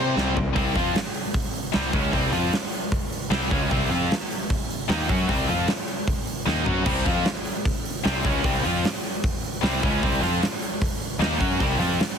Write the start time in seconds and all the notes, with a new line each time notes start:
Already playing: C3 G3 C4 C5
0.16 C2, snare
0.36 C2, floor tom
0.53 C2 C3 G3 C4, kick, open hi-hat
0.75 F2 F3 C4 F4, kick, snare, open hi-hat
0.95 snare, open hi-hat
1.06 snare
1.14 open hi-hat
1.34 kick, open hi-hat
1.54 open hi-hat
1.72 C2 C3 G3 C4, snare, open hi-hat
1.92 C#2 C#3 G#3 C#4, kick, open hi-hat
2.12 C2 C3 G3 C4, kick, open hi-hat
2.31 F2 F3 C4 F4, snare, open hi-hat
2.53 snare, open hi-hat
2.63 snare
2.72 open hi-hat
2.92 kick, open hi-hat
3.12 open hi-hat
3.30 C2 C3 G3 C4, snare, open hi-hat
3.50 C#2 C#3 G#3 C#4, kick, open hi-hat
3.69 C2 C3 G3 C4, kick, open hi-hat
3.90 F2 F3 C4 F4, open hi-hat
4.11 snare, open hi-hat
4.30 open hi-hat
4.50 kick, open hi-hat
4.70 open hi-hat
4.88 D#2 D#3 A#3 D#4, snare, open hi-hat
5.09 F#2 F#3 C#4 F#4, kick, open hi-hat
5.28 C2 C3 G3 C4, kick, open hi-hat
5.48 F2 F3 C4 F4, open hi-hat
5.68 snare, open hi-hat
5.88 open hi-hat
6.08 kick, open hi-hat
6.27 open hi-hat
6.46 D#2 D#3 A#3 D#4, snare
6.65 F#2 F#3 C#4 F#4, floor tom
6.84 C2 C3 G3 C4, kick, crash
7.04 F2 F3 C4 F4, kick, open hi-hat
7.25 snare, open hi-hat
7.45 open hi-hat
7.65 kick, open hi-hat
7.85 open hi-hat
8.04 C2 C3 G3 C4, snare, open hi-hat
8.24 C#2 C#3 G#3 C#4, kick, open hi-hat
8.43 C2 C3 G3 C4, kick, open hi-hat
8.62 F3 C4 F4, open hi-hat
8.66 F2
8.85 snare, open hi-hat
9.05 open hi-hat
9.24 kick, open hi-hat
9.44 open hi-hat
9.61 C2 C3 G3 C4, snare, open hi-hat
9.82 C#2 C#3 G#3 C#4, kick
10.03 C2 C3 G3 C4, kick, open hi-hat
10.22 F2 F3 C4 F4, snare, open hi-hat
10.43 snare, open hi-hat
10.62 open hi-hat
10.82 kick, open hi-hat
11.02 open hi-hat
11.19 D#2 D#3 A#3 D#4, snare, open hi-hat
11.39 F#2 F#3 C#4 F#4, kick, open hi-hat
11.59 C2 C3 G3 C4, kick, open hi-hat
11.78 F2 F3 C4 F4, snare, open hi-hat
12.00 snare, open hi-hat
12.10 snare